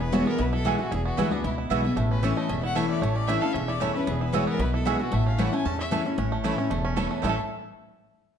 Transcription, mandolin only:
0.13 0.23 B3 medium
0.13 0.23 F#4 medium
0.13 0.23 E5 medium
0.13 0.23 G#5 loud
0.65 0.75 B3 medium
0.65 0.75 F#4 medium
0.65 0.75 E5 medium
0.65 0.76 G#5 medium
1.17 1.27 B3 medium
1.17 1.28 F#4 medium
1.17 1.28 E5 medium
1.17 1.28 G#5 medium
1.70 1.80 B3 medium
1.70 1.80 F#4 loud
1.70 1.80 E5 loud
1.70 1.81 G#5 loud
2.23 2.33 A3 medium
2.23 2.33 E4 medium
2.23 2.33 C#5 medium
2.23 2.33 A5 medium
2.75 2.85 A3 medium
2.75 2.85 E4 medium
2.75 2.85 C#5 loud
2.75 2.86 A5 loud
3.28 3.38 A3 medium
3.28 3.38 E4 medium
3.28 3.38 C#5 medium
3.28 3.38 A5 medium
3.80 3.90 A3 medium
3.80 3.90 E4 medium
3.80 3.91 C#5 loud
3.80 3.91 A5 medium
4.33 4.43 B3 medium
4.33 4.43 F#4 medium
4.33 4.43 E5 loud
4.33 4.44 G#5 loud
4.86 4.95 B3 loud
4.86 4.96 F#4 medium
4.86 4.96 E5 loud
4.86 4.96 G#5 loud
5.39 5.48 A3 medium
5.39 5.48 E4 medium
5.39 5.49 C#5 medium
5.39 5.49 A5 medium
5.91 6.01 A3 medium
5.91 6.01 E4 medium
5.91 6.02 C#5 medium
5.91 6.02 A5 loud
6.44 6.54 A3 medium
6.44 6.54 E4 medium
6.44 6.54 C#5 medium
6.44 6.54 A5 medium
6.96 7.06 A3 medium
6.96 7.06 E4 medium
6.96 7.07 C#5 loud
6.96 7.07 A5 medium
7.22 7.34 A3 medium
7.22 7.34 E4 medium
7.22 7.35 C#5 medium
7.22 7.35 A5 loud

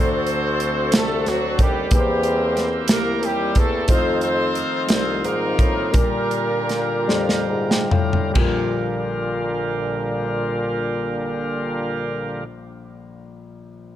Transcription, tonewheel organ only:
0.00 1.87 D3 medium
0.00 1.87 A3 medium
0.00 1.88 C4 soft
0.00 1.88 F#5 medium
1.92 3.85 A#3 medium
1.92 3.85 C4 medium
1.92 3.85 E4 medium
1.92 3.85 G4 medium
3.91 5.92 D#3 medium
3.91 5.91 F3 soft
3.91 5.91 C4 medium
3.91 5.91 F4 medium
5.93 6.01 C#3 soft
5.93 8.32 G3 medium
5.93 8.32 F4 medium
5.93 8.32 A#4 medium
6.00 8.34 D3 medium
8.34 12.45 D3 medium
8.34 12.43 G3 medium
8.34 12.44 A#3 medium
8.34 12.44 F4 medium

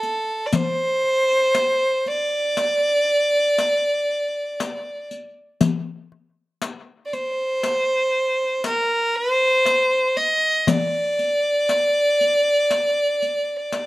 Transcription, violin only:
0.00 0.48 A4 medium
0.46 0.56 D5 medium
0.55 2.09 C5 loud
2.08 5.11 D5 loud
7.06 7.15 D5 medium
7.13 8.66 C5 medium
8.67 9.17 A#4 medium
9.15 10.19 C5 loud
10.17 10.70 D#5 loud
10.68 13.87 D5 loud

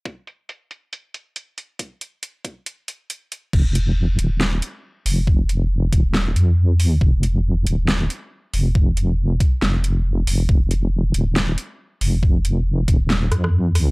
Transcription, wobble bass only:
3.53 4.17 F1 medium
4.19 4.61 D#1 loud
5.06 5.91 F1 medium
5.93 6.35 D#1 medium
6.36 6.81 F2 medium
6.81 7.00 E2 medium
7.01 7.65 F1 loud
7.66 8.08 D#1 loud
8.54 9.39 F1 loud
9.62 10.26 F1 medium
10.27 10.48 F1 medium
10.49 11.13 F1 medium
11.14 11.56 D#1 medium
12.01 12.87 F1 loud
12.88 13.30 D#1 medium
13.32 13.91 F2 medium

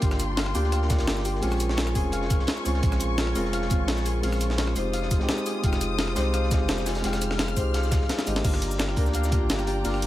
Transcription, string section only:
0.00 1.39 F4 medium
0.00 4.72 A#4 medium
0.00 1.39 G5 medium
0.00 1.41 C6 loud
1.43 8.40 F4 medium
1.43 4.73 G#5 medium
1.43 4.73 C#6 medium
4.76 8.41 C5 medium
4.76 6.84 D#6 loud
6.87 8.43 F6 medium
8.44 10.07 F4 medium
8.44 10.07 D5 medium
8.44 10.07 G5 medium
8.44 10.07 A#5 medium

